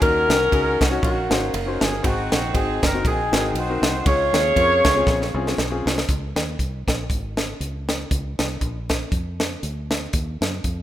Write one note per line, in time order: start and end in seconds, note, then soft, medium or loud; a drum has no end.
0.00 0.26 D#2 loud
0.00 0.76 D#3 medium
0.00 0.35 C#4 medium
0.00 0.99 C#4 medium
0.00 0.35 D#4 medium
0.00 0.36 F#4 medium
0.00 0.80 F#4 medium
0.00 0.80 A#4 loud
0.00 0.36 A#4 medium
0.00 kick loud
0.00 ride medium
0.28 0.48 C2 medium
0.28 snare loud
0.28 ride medium
0.51 0.76 C#2 medium
0.51 0.78 C#4 medium
0.51 0.78 D#4 medium
0.51 0.79 F#4 medium
0.51 0.79 G#4 medium
0.51 kick medium
0.51 ride medium
0.81 1.00 C2 medium
0.81 1.02 F#4 medium
0.81 kick medium
0.81 snare loud
0.81 ride medium
0.90 1.14 C#4 medium
0.90 1.15 D#4 medium
0.90 1.15 F#4 medium
0.90 1.15 C#5 medium
1.03 1.27 A#1 loud
1.03 2.00 A#3 medium
1.03 2.00 C#4 medium
1.03 1.48 F#4 medium
1.03 kick loud
1.03 ride medium
1.29 1.50 G#1 medium
1.29 1.51 C#4 medium
1.29 1.51 D#4 medium
1.29 1.52 F#4 medium
1.29 1.52 C5 medium
1.29 snare loud
1.29 ride medium
1.54 1.77 F#1 loud
1.54 ride medium
1.66 1.90 C#4 medium
1.66 1.91 D#4 medium
1.66 1.91 F#4 medium
1.66 1.91 C5 medium
1.81 2.00 G1 medium
1.81 2.03 G#4 medium
1.81 snare loud
1.81 ride medium
2.03 2.28 G#1 loud
2.03 2.78 G#2 medium
2.03 2.37 C4 medium
2.03 3.02 C4 medium
2.03 2.37 D#4 medium
2.03 3.02 D#4 medium
2.03 2.37 F#4 medium
2.03 2.32 F#4 medium
2.03 2.38 G#4 medium
2.03 kick loud
2.03 ride medium
2.32 2.51 A#1 medium
2.32 2.53 F#4 medium
2.32 snare loud
2.32 ride medium
2.53 2.78 G#1 medium
2.53 2.80 C4 medium
2.53 2.80 D#4 medium
2.53 2.81 F#4 medium
2.53 2.83 G#4 medium
2.53 2.81 G#4 medium
2.53 kick medium
2.53 ride medium
2.83 3.02 F#1 loud
2.83 3.06 A#4 loud
2.83 kick medium
2.83 snare loud
2.83 ride medium
2.94 3.17 C4 medium
2.94 3.17 D#4 medium
2.94 3.18 F#4 medium
2.94 3.18 A#4 medium
3.05 3.29 A#1 medium
3.05 4.03 C4 medium
3.05 3.56 D#4 medium
3.05 3.56 G#4 medium
3.05 kick loud
3.05 ride medium
3.32 3.51 G#1 medium
3.32 3.53 C4 medium
3.32 3.54 D#4 medium
3.32 3.54 F#4 medium
3.32 3.54 A#4 medium
3.32 snare loud
3.32 ride soft
3.54 3.78 B1 medium
3.54 4.03 D#4 medium
3.54 4.03 F#4 medium
3.54 4.07 C5 loud
3.54 ride medium
3.69 3.93 C4 medium
3.69 3.93 D#4 medium
3.69 3.93 F#4 medium
3.69 3.94 A#4 medium
3.82 4.01 C2 medium
3.82 snare loud
3.82 ride medium
4.05 4.30 C#2 loud
4.05 4.81 C#3 medium
4.05 4.39 G#3 medium
4.05 4.39 C#4 medium
4.05 4.40 F4 medium
4.05 5.54 F4 medium
4.05 4.40 G#4 medium
4.05 5.54 G#4 medium
4.05 5.54 C#5 loud
4.05 kick loud
4.05 ride medium
4.33 4.52 D#2 medium
4.33 snare loud
4.33 ride medium
4.55 4.80 F2 loud
4.55 4.82 C4 medium
4.55 4.82 C#4 medium
4.55 4.83 F4 medium
4.55 4.83 A#4 medium
4.55 kick medium
4.55 ride medium
4.84 5.04 C#2 medium
4.84 kick medium
4.84 snare loud
4.84 ride medium
4.95 5.19 C4 medium
4.95 5.19 C#4 medium
4.95 5.19 F4 medium
4.95 5.20 G#4 loud
5.07 5.31 A#1 loud
5.07 kick loud
5.07 snare medium
5.22 snare medium
5.34 5.54 C2 loud
5.34 5.55 C4 medium
5.34 5.56 C#4 medium
5.34 5.56 F4 medium
5.34 5.56 G#4 medium
5.47 snare medium
5.58 5.81 B1 medium
5.58 snare medium
5.70 5.95 C4 medium
5.70 5.95 C#4 medium
5.70 5.95 F4 medium
5.70 5.95 G#4 medium
5.86 6.05 C2 medium
5.86 snare loud
5.98 snare medium
6.09 6.32 C#2 loud
6.09 kick loud
6.09 closed hi-hat medium
6.36 6.55 D#2 medium
6.36 snare loud
6.36 closed hi-hat medium
6.59 6.83 C2 medium
6.59 kick medium
6.59 closed hi-hat medium
6.87 7.06 A#1 medium
6.87 kick medium
6.87 snare loud
6.87 closed hi-hat medium
7.10 7.53 G#1 medium
7.10 kick loud
7.10 closed hi-hat medium
7.37 snare loud
7.37 closed hi-hat medium
7.60 8.03 C#2 medium
7.60 closed hi-hat medium
7.89 snare loud
7.89 closed hi-hat medium
8.11 8.35 C#2 loud
8.11 kick loud
8.11 closed hi-hat medium
8.39 8.58 C2 medium
8.39 snare loud
8.39 closed hi-hat medium
8.61 9.04 A#1 medium
8.61 kick medium
8.61 closed hi-hat medium
8.89 kick medium
8.89 snare loud
8.89 closed hi-hat medium
9.12 9.55 F2 medium
9.12 kick loud
9.12 closed hi-hat medium
9.40 snare loud
9.40 closed hi-hat medium
9.63 10.06 D2 medium
9.63 closed hi-hat medium
9.91 snare loud
9.91 closed hi-hat medium
10.13 10.38 D#2 loud
10.13 kick loud
10.13 closed hi-hat loud
10.41 10.61 F#2 medium
10.41 snare loud
10.41 closed hi-hat medium
10.64 10.82 F2 medium
10.64 kick medium
10.64 closed hi-hat medium